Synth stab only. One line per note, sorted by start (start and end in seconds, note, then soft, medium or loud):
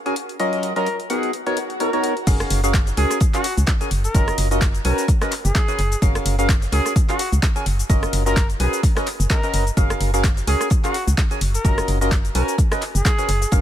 0.06 0.15 C#4 medium
0.06 0.15 F#4 medium
0.06 0.15 G#4 medium
0.06 0.15 A#4 medium
0.06 0.15 G#5 medium
0.40 0.73 F#3 medium
0.40 0.73 C#4 medium
0.40 0.73 F4 medium
0.40 0.73 F#4 medium
0.40 0.73 A#4 medium
0.40 0.73 D#5 loud
0.76 0.88 F#3 medium
0.76 0.88 C#4 medium
0.76 0.88 F4 medium
0.76 0.88 F#4 medium
0.76 0.88 A#4 medium
0.76 0.88 D#5 medium
1.10 1.31 B3 medium
1.10 1.31 D#4 medium
1.10 1.31 F#4 medium
1.10 1.31 A#4 medium
1.10 1.31 F#5 medium
1.47 1.58 B3 medium
1.47 1.58 D#4 medium
1.47 1.58 F#4 medium
1.47 1.58 A#4 medium
1.47 1.58 C#5 loud
1.80 1.90 B3 medium
1.80 1.90 D#4 medium
1.80 1.90 F#4 medium
1.80 1.90 A#4 medium
1.80 1.90 C#5 medium
1.93 2.14 B3 medium
1.93 2.14 D#4 medium
1.93 2.14 F#4 medium
1.93 2.14 A#4 medium
1.93 2.14 C#5 loud
2.27 2.61 C#4 loud
2.27 2.60 F#4 medium
2.27 2.60 G#4 medium
2.27 2.60 A#4 medium
2.27 2.60 F5 loud
2.64 2.75 C#4 medium
2.64 2.75 F#4 medium
2.64 2.75 G#4 medium
2.64 2.75 A#4 medium
2.64 2.75 F5 medium
2.97 3.19 C#4 medium
2.97 3.19 F#4 medium
2.97 3.19 G#4 medium
2.97 3.19 A#4 medium
2.97 3.19 G#5 medium
3.34 3.46 C#4 loud
3.34 3.46 F#4 medium
3.34 3.46 G#4 medium
3.34 3.46 A#4 medium
3.34 3.46 F5 loud
3.81 3.90 C#4 medium
3.81 3.90 F#4 medium
3.81 3.90 G#4 medium
3.81 3.90 A#4 medium
3.81 3.90 G#5 medium
4.15 4.48 C#4 loud
4.15 4.48 F4 medium
4.15 4.48 F#4 medium
4.15 4.48 A#4 medium
4.15 4.48 D#5 loud
4.51 4.63 C#4 medium
4.51 4.63 F4 medium
4.51 4.63 F#4 medium
4.51 4.63 A#4 medium
4.51 4.63 D#5 medium
4.85 5.06 C#4 medium
4.85 5.06 F#4 medium
4.85 5.06 A#4 medium
4.85 5.06 B4 medium
4.85 5.06 G#5 medium
5.21 5.33 C#4 loud
5.21 5.33 F#4 medium
5.21 5.33 A#4 medium
5.21 5.33 B4 medium
5.21 5.33 D#5 loud
5.68 5.80 C#4 medium
5.68 5.80 F#4 medium
5.68 5.80 A#4 medium
5.68 5.80 B4 medium
5.68 5.80 G#5 medium
6.02 6.36 C#4 medium
6.02 6.36 F#4 medium
6.02 6.36 G#4 medium
6.02 6.36 A#4 medium
6.02 6.36 F5 loud
6.39 6.50 C#4 medium
6.39 6.50 F#4 medium
6.39 6.50 G#4 medium
6.39 6.50 A#4 medium
6.39 6.50 F5 medium
6.72 6.94 C#4 medium
6.72 6.94 F#4 medium
6.72 6.94 G#4 medium
6.72 6.94 A#4 medium
6.72 6.94 G#5 loud
7.09 7.21 C#4 loud
7.09 7.21 F#4 medium
7.09 7.21 G#4 medium
7.09 7.21 A#4 medium
7.09 7.21 F5 loud
7.56 7.65 C#4 medium
7.56 7.65 F#4 medium
7.56 7.65 G#4 medium
7.56 7.65 A#4 medium
7.56 7.65 G#5 medium
7.90 8.23 C#4 loud
7.90 8.23 F4 medium
7.90 8.23 F#4 medium
7.90 8.23 A#4 medium
7.90 8.23 D#5 loud
8.26 8.38 C#4 medium
8.26 8.38 F4 medium
8.26 8.38 F#4 medium
8.26 8.38 A#4 medium
8.26 8.38 D#5 loud
8.60 8.81 C#4 medium
8.60 8.81 F#4 medium
8.60 8.81 A#4 medium
8.60 8.81 B4 medium
8.60 8.81 G#5 medium
8.96 9.08 C#4 loud
8.96 9.08 F#4 medium
8.96 9.08 A#4 medium
8.96 9.08 B4 medium
8.96 9.08 D#5 loud
9.30 9.40 C#4 medium
9.30 9.40 F#4 medium
9.30 9.40 A#4 medium
9.30 9.40 B4 medium
9.30 9.40 D#5 loud
9.43 9.64 C#4 loud
9.43 9.64 F#4 medium
9.43 9.64 A#4 medium
9.43 9.64 B4 medium
9.43 9.64 D#5 loud
9.77 10.11 C#4 medium
9.77 10.11 F#4 medium
9.77 10.11 G#4 medium
9.77 10.11 A#4 medium
9.77 10.11 F5 loud
10.14 10.26 C#4 medium
10.14 10.26 F#4 medium
10.14 10.26 G#4 medium
10.14 10.26 A#4 medium
10.14 10.26 F5 loud
10.47 10.69 C#4 medium
10.47 10.69 F#4 medium
10.47 10.69 G#4 medium
10.47 10.69 A#4 medium
10.47 10.69 G#5 loud
10.84 10.96 C#4 loud
10.84 10.96 F#4 medium
10.84 10.96 G#4 medium
10.84 10.96 A#4 medium
10.84 10.96 F5 loud
11.31 11.40 C#4 medium
11.31 11.40 F#4 medium
11.31 11.40 G#4 medium
11.31 11.40 A#4 medium
11.31 11.40 G#5 loud
11.65 11.98 C#4 medium
11.65 11.98 F4 medium
11.65 11.98 F#4 medium
11.65 11.98 A#4 medium
11.65 11.98 D#5 loud
12.01 12.13 C#4 medium
12.01 12.13 F4 medium
12.01 12.13 F#4 medium
12.01 12.13 A#4 medium
12.01 12.13 D#5 loud
12.35 12.56 C#4 medium
12.35 12.56 F#4 medium
12.35 12.56 A#4 medium
12.35 12.56 B4 medium
12.35 12.56 G#5 medium
12.71 12.83 C#4 medium
12.71 12.83 F#4 medium
12.71 12.83 A#4 medium
12.71 12.83 B4 medium
12.71 12.83 D#5 loud
13.18 13.30 C#4 medium
13.18 13.30 F#4 medium
13.18 13.30 A#4 medium
13.18 13.30 B4 medium
13.18 13.30 G#5 medium
13.52 13.61 C#4 loud
13.52 13.61 F#4 medium
13.52 13.61 G#4 medium
13.52 13.61 A#4 medium
13.52 13.61 F5 loud